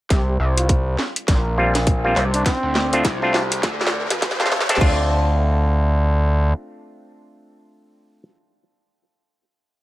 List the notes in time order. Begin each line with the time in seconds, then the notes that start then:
0.10 C2 G4, kick, snare, closed hi-hat, riser
0.28 G4
0.40 C2
0.57 F4, closed hi-hat
0.69 kick, closed hi-hat
0.99 snare
1.16 closed hi-hat
1.28 A#1, kick, snare, closed hi-hat
1.58 G3 A#3 C4 F4
1.75 snare, closed hi-hat
1.87 kick, closed hi-hat
2.04 G3 A#3 C4 F4
2.16 C2, snare
2.34 D4, closed hi-hat
2.46 C4, kick, snare, closed hi-hat
2.63 D2
2.75 snare
2.93 A3 C4 D4 F4, closed hi-hat
3.05 C2, kick, snare, closed hi-hat
3.22 A3 C4 D4 F4
3.34 snare
3.52 closed hi-hat
3.63 D2, kick, snare, closed hi-hat
3.81 snare
3.87 snare
4.10 F2, snare, closed hi-hat
4.22 kick, snare, closed hi-hat
4.31 snare
4.40 A3 C4 D4 F4, snare
4.46 snare
4.52 snare
4.61 snare
4.69 A3 C4 D4 A4, snare, closed hi-hat
4.75 snare
4.81 D2 A3 C4 D4 F4, kick, crash